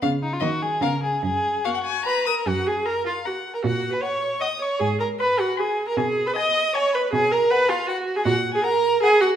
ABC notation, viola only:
X:1
M:3/4
L:1/16
Q:1/4=155
K:F#
V:1 name="Viola"
B,4 A,4 B,4 | z4 A,4 B2 A2 | F2 G2 A2 E2 F3 A | F3 B c4 d2 c2 |
G2 A2 B2 F2 G3 A | G3 B d4 c2 B2 | [K:Cblyd] A2 B2 =B2 F2 ^F3 A | G3 A B4 A2 G2 |]